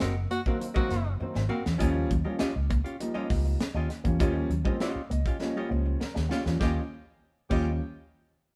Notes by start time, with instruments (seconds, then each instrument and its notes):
0.00 fingered electric bass F#1, hollow-body jazz guitar C4 F#4 A#4 D#5, snare, closed hi-hat
0.16 upright piano A#3 C4
0.31 clean electric guitar A#3, tenor saxophone F#4, muted hollow-body jazz guitar stroke, closed hi-hat
0.46 upright piano D#3 F#3 A#3 C4, hollow-body jazz guitar C4 F#4 A#4 F5, kick
0.60 muted hollow-body jazz guitar stroke, muted clean electric guitar stroke, closed hi-hat
0.74 upright piano D#3 F#3 A#3 C4, clean electric guitar G#3, hollow-body jazz guitar C4 F#4 A#4 D#5, tenor saxophone F#4, kick
0.89 fingered electric bass F#1, clean electric guitar A#3, muted hollow-body jazz guitar stroke, snare, closed hi-hat
1.05 upright piano A#3 C4, muted hollow-body jazz guitar stroke
1.20 upright piano D#3 F#3 A#3 C4, muted hollow-body jazz guitar stroke, muted clean electric guitar stroke, muted fingered electric bass stroke
1.34 fingered electric bass G#1, clean electric guitar C4, muted hollow-body jazz guitar stroke, snare
1.49 clean electric guitar A#3, hollow-body jazz guitar C4 F#4 A#4 F5
1.66 fingered electric bass E2, snare
1.78 fingered electric bass D#2, upright piano F3 G3 A#3 C#4, hollow-body jazz guitar C#4 F4 G4 D#5, kick, closed hi-hat
1.94 muted hollow-body jazz guitar stroke, muted clean electric guitar stroke
2.10 fingered electric bass D#2, clean electric guitar F#3, muted hollow-body jazz guitar stroke, kick, closed hi-hat
2.24 upright piano F3 G3 A#3 C#4, clean electric guitar G3, hollow-body jazz guitar C#4 F4 G4 D#5
2.39 hollow-body jazz guitar C#4 F4 G4 D#5, muted fingered electric bass stroke, snare, closed hi-hat
2.56 fingered electric bass C#2, upright piano A#3 C#4
2.70 clean electric guitar A#3, muted hollow-body jazz guitar stroke, kick, closed hi-hat
2.84 hollow-body jazz guitar C#4 F4 G4 F5, closed hi-hat
3.00 upright piano F3 G3 A#3 D#4, muted clean electric guitar stroke, muted hollow-body jazz guitar stroke, closed hi-hat
3.14 clean electric guitar G3, hollow-body jazz guitar C#4 F4 G4 D#5
3.30 fingered electric bass C#2, clean electric guitar A#3, muted hollow-body jazz guitar stroke, kick, snare, open hi-hat
3.45 muted hollow-body jazz guitar stroke
3.61 muted hollow-body jazz guitar stroke, snare, closed hi-hat
3.74 fingered electric bass D#2, clean electric guitar C#4, hollow-body jazz guitar C#4 F4 G4 D#5
3.89 upright piano A#3 C#4, muted clean electric guitar stroke, muted hollow-body jazz guitar stroke, snare, closed hi-hat
4.04 fingered electric bass E2, upright piano F3 G3 A#3 C#4, clean electric guitar A#3, muted hollow-body jazz guitar stroke, kick, closed hi-hat
4.19 fingered electric bass D#2, upright piano F3 G3 A#3 C#4, hollow-body jazz guitar C#4 F4 G4 D#5, kick, closed hi-hat
4.35 muted hollow-body jazz guitar stroke
4.50 fingered electric bass D#2, clean electric guitar F#3, muted hollow-body jazz guitar stroke, closed hi-hat
4.65 upright piano F3 G3 A#3 C4, clean electric guitar G3, hollow-body jazz guitar C#4 F4 G4 D#5, kick
4.80 hollow-body jazz guitar C#4 F4 G4 D#5, snare, closed hi-hat
4.96 muted fingered electric bass stroke
5.10 fingered electric bass C#2, clean electric guitar A#3, upright piano D#5, muted hollow-body jazz guitar stroke, closed hi-hat
5.26 hollow-body jazz guitar C#4 F4 G4 F5, kick, closed hi-hat
5.40 upright piano F3 G3 A#3 C#4 D#5, muted clean electric guitar stroke, muted hollow-body jazz guitar stroke, snare
5.55 clean electric guitar G3, hollow-body jazz guitar C#4 F4 G4 D#5, upright piano C#5
5.69 fingered electric bass C#2, clean electric guitar A#3, upright piano C5, muted hollow-body jazz guitar stroke
5.86 muted hollow-body jazz guitar stroke
6.00 upright piano A#4, muted clean electric guitar stroke, muted hollow-body jazz guitar stroke, muted fingered electric bass stroke, snare
6.14 fingered electric bass D#2, clean electric guitar C#4, upright piano G4, muted hollow-body jazz guitar stroke, snare
6.29 clean electric guitar A#3, upright piano A#3 C#4 F4, hollow-body jazz guitar C#4 F4 G4 F5, snare
6.45 fingered electric bass E2, upright piano F3 G3 A#3 C#4, muted hollow-body jazz guitar stroke, snare
6.60 fingered electric bass D#2, upright piano F3 G3 A#3 C#4, clean electric guitar A#3, hollow-body jazz guitar C#4 F4 G4 D#5, tenor saxophone G4, kick, snare
7.50 fingered electric bass D#2, upright piano F3 G3 A#3 C#4, clean electric guitar A#3, hollow-body jazz guitar C#4 F4 G4 D#5, tenor saxophone G4, kick, crash